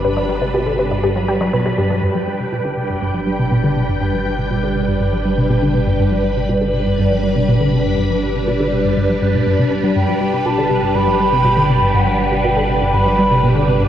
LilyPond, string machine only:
\new Staff \with { instrumentName = "String machine" } { \time 4/4 \key g \major \tempo 4 = 121 << { b''1 | g''1~ | g''1 | b''1~ |
b''1 | g'1~ | g'1 | } \\ { <g d' b'>1 | <g d' b'>1~ | <g d' b'>1~ | <g d' b'>1~ |
<g d' b'>1~ | <g d' b'>1~ | <g d' b'>1 | } >> }